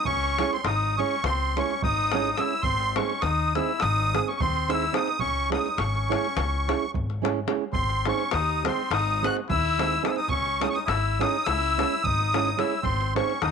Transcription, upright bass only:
0, 0, Header, 1, 2, 480
1, 0, Start_track
1, 0, Tempo, 567644
1, 52, Time_signature, 9, 3, 24, 8
1, 11427, End_track
2, 0, Start_track
2, 0, Title_t, "Upright bass"
2, 0, Program_c, 0, 32
2, 49, Note_on_c, 0, 37, 91
2, 349, Note_off_c, 0, 37, 0
2, 544, Note_on_c, 0, 32, 92
2, 845, Note_off_c, 0, 32, 0
2, 1046, Note_on_c, 0, 37, 104
2, 1346, Note_off_c, 0, 37, 0
2, 1551, Note_on_c, 0, 32, 93
2, 1953, Note_off_c, 0, 32, 0
2, 2223, Note_on_c, 0, 32, 91
2, 2521, Note_off_c, 0, 32, 0
2, 2728, Note_on_c, 0, 39, 101
2, 3024, Note_off_c, 0, 39, 0
2, 3232, Note_on_c, 0, 32, 117
2, 3526, Note_off_c, 0, 32, 0
2, 3721, Note_on_c, 0, 39, 89
2, 4121, Note_off_c, 0, 39, 0
2, 4395, Note_on_c, 0, 37, 91
2, 4690, Note_off_c, 0, 37, 0
2, 4887, Note_on_c, 0, 32, 96
2, 5184, Note_off_c, 0, 32, 0
2, 5383, Note_on_c, 0, 37, 117
2, 5679, Note_off_c, 0, 37, 0
2, 5876, Note_on_c, 0, 32, 86
2, 6276, Note_off_c, 0, 32, 0
2, 6547, Note_on_c, 0, 32, 87
2, 6844, Note_off_c, 0, 32, 0
2, 7042, Note_on_c, 0, 39, 103
2, 7339, Note_off_c, 0, 39, 0
2, 7530, Note_on_c, 0, 32, 99
2, 7829, Note_off_c, 0, 32, 0
2, 8029, Note_on_c, 0, 39, 98
2, 8430, Note_off_c, 0, 39, 0
2, 8694, Note_on_c, 0, 37, 92
2, 8992, Note_off_c, 0, 37, 0
2, 9198, Note_on_c, 0, 32, 98
2, 9494, Note_off_c, 0, 32, 0
2, 9695, Note_on_c, 0, 37, 116
2, 9990, Note_off_c, 0, 37, 0
2, 10179, Note_on_c, 0, 32, 88
2, 10580, Note_off_c, 0, 32, 0
2, 10855, Note_on_c, 0, 32, 88
2, 11151, Note_off_c, 0, 32, 0
2, 11349, Note_on_c, 0, 39, 96
2, 11427, Note_off_c, 0, 39, 0
2, 11427, End_track
0, 0, End_of_file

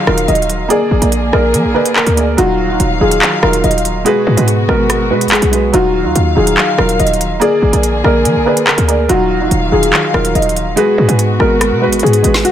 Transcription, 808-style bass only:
0, 0, Header, 1, 2, 480
1, 0, Start_track
1, 0, Key_signature, -6, "minor"
1, 0, Tempo, 419580
1, 802, Time_signature, 4, 2, 24, 8
1, 14319, End_track
2, 0, Start_track
2, 0, Title_t, "808-style bass"
2, 0, Program_c, 0, 38
2, 83, Note_on_c, 0, 27, 104
2, 313, Note_off_c, 0, 27, 0
2, 323, Note_on_c, 0, 27, 102
2, 784, Note_off_c, 0, 27, 0
2, 1043, Note_on_c, 0, 32, 104
2, 1158, Note_off_c, 0, 32, 0
2, 1163, Note_on_c, 0, 34, 102
2, 1508, Note_off_c, 0, 34, 0
2, 1522, Note_on_c, 0, 34, 103
2, 1762, Note_on_c, 0, 53, 105
2, 1779, Note_off_c, 0, 34, 0
2, 1883, Note_on_c, 0, 34, 102
2, 1900, Note_off_c, 0, 53, 0
2, 1997, Note_off_c, 0, 34, 0
2, 2362, Note_on_c, 0, 38, 106
2, 2708, Note_off_c, 0, 38, 0
2, 2722, Note_on_c, 0, 27, 115
2, 3183, Note_off_c, 0, 27, 0
2, 3202, Note_on_c, 0, 27, 110
2, 3433, Note_off_c, 0, 27, 0
2, 3443, Note_on_c, 0, 27, 100
2, 3673, Note_off_c, 0, 27, 0
2, 3923, Note_on_c, 0, 27, 106
2, 4153, Note_off_c, 0, 27, 0
2, 4163, Note_on_c, 0, 27, 103
2, 4623, Note_off_c, 0, 27, 0
2, 4883, Note_on_c, 0, 44, 108
2, 4995, Note_off_c, 0, 44, 0
2, 5002, Note_on_c, 0, 44, 100
2, 5348, Note_off_c, 0, 44, 0
2, 5362, Note_on_c, 0, 32, 103
2, 5843, Note_on_c, 0, 47, 100
2, 5860, Note_off_c, 0, 32, 0
2, 6022, Note_on_c, 0, 32, 100
2, 6039, Note_off_c, 0, 47, 0
2, 6193, Note_off_c, 0, 32, 0
2, 6202, Note_on_c, 0, 35, 105
2, 6548, Note_off_c, 0, 35, 0
2, 6562, Note_on_c, 0, 27, 113
2, 6923, Note_on_c, 0, 39, 99
2, 6940, Note_off_c, 0, 27, 0
2, 7037, Note_off_c, 0, 39, 0
2, 7042, Note_on_c, 0, 39, 106
2, 7273, Note_off_c, 0, 39, 0
2, 7283, Note_on_c, 0, 27, 104
2, 7513, Note_off_c, 0, 27, 0
2, 7762, Note_on_c, 0, 27, 104
2, 7992, Note_off_c, 0, 27, 0
2, 8003, Note_on_c, 0, 27, 106
2, 8463, Note_off_c, 0, 27, 0
2, 8722, Note_on_c, 0, 32, 108
2, 8835, Note_off_c, 0, 32, 0
2, 8842, Note_on_c, 0, 34, 102
2, 9188, Note_off_c, 0, 34, 0
2, 9201, Note_on_c, 0, 34, 105
2, 9442, Note_on_c, 0, 53, 102
2, 9459, Note_off_c, 0, 34, 0
2, 9562, Note_on_c, 0, 34, 96
2, 9580, Note_off_c, 0, 53, 0
2, 9676, Note_off_c, 0, 34, 0
2, 10042, Note_on_c, 0, 38, 105
2, 10388, Note_off_c, 0, 38, 0
2, 10403, Note_on_c, 0, 27, 115
2, 10864, Note_off_c, 0, 27, 0
2, 10882, Note_on_c, 0, 27, 109
2, 11113, Note_off_c, 0, 27, 0
2, 11122, Note_on_c, 0, 27, 104
2, 11353, Note_off_c, 0, 27, 0
2, 11602, Note_on_c, 0, 27, 102
2, 11832, Note_off_c, 0, 27, 0
2, 11842, Note_on_c, 0, 27, 104
2, 12303, Note_off_c, 0, 27, 0
2, 12563, Note_on_c, 0, 44, 104
2, 12675, Note_off_c, 0, 44, 0
2, 12681, Note_on_c, 0, 44, 103
2, 13028, Note_off_c, 0, 44, 0
2, 13042, Note_on_c, 0, 32, 104
2, 13403, Note_on_c, 0, 47, 100
2, 13420, Note_off_c, 0, 32, 0
2, 13582, Note_on_c, 0, 32, 100
2, 13600, Note_off_c, 0, 47, 0
2, 13753, Note_off_c, 0, 32, 0
2, 13763, Note_on_c, 0, 44, 103
2, 13993, Note_off_c, 0, 44, 0
2, 14002, Note_on_c, 0, 32, 107
2, 14233, Note_off_c, 0, 32, 0
2, 14319, End_track
0, 0, End_of_file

